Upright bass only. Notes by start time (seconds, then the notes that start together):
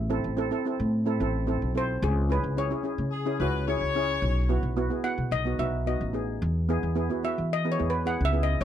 Already playing: A1
0.24 A1
0.80 A2
1.20 A1
1.62 B1
2.02 C#2
2.44 C#2
2.98 C#3
3.40 C#2
3.81 C#2
4.22 B1
4.63 B1
5.18 B2
5.31 B1
5.59 B1
6.01 A1
6.42 E2
6.83 E2
7.38 E3
7.80 E2
8.21 C#2
8.61 B1